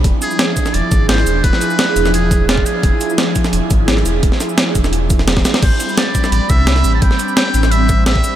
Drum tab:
CC |----------------|----------------|----------------|----------------|
HH |x-x-x-x-x-x-x-x-|x-x-x-x-x-x-x-x-|x-x-x-x-x-x-x-x-|x-x-x-x-x-x-x-x-|
SH |--xx--xx--x---x-|--xx--xx--x---x-|--xx--xx--x---x-|--xx--xx--x---x-|
SD |----o--o----oo--|-o--o--o----o---|----o--o----oo--|-oo-o--o---ooooo|
BD |o-----o---o-----|o---------o--o--|o-----o---o-----|o-----o---o--o--|

CC |x---------------|----------------|
HH |x-x-x-x-x-x-x-x-|x-x-x-x-x-x-x-x-|
SH |--xx--xx--x---x-|--xx--xx--x---x-|
SD |----o--o----oo--|-o--o--o----o---|
BD |o-----o---o-----|o---------o--o--|